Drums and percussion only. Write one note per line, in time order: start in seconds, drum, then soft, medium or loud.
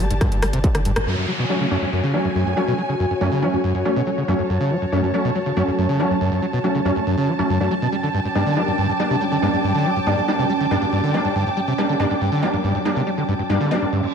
0.11 closed hi-hat medium
0.21 kick loud
0.21 cross-stick medium
0.21 closed hi-hat medium
0.32 closed hi-hat medium
0.42 cross-stick loud
0.42 open hi-hat loud
0.53 closed hi-hat medium
0.64 kick loud
0.64 closed hi-hat medium
0.75 cross-stick medium
0.75 closed hi-hat medium
0.85 open hi-hat medium
0.96 cross-stick loud
0.96 closed hi-hat medium